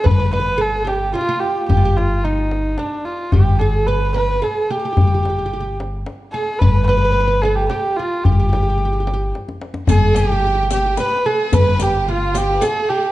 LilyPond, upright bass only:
\new Staff \with { instrumentName = "Upright bass" } { \clef bass \time 3/4 \tempo 4 = 110 g,,2 r4 | g,,2 r4 | g,,2 r4 | g,,2 r4 |
g,,2 r4 | g,,2 r4 | g,,2 r4 | g,,2 r4 | }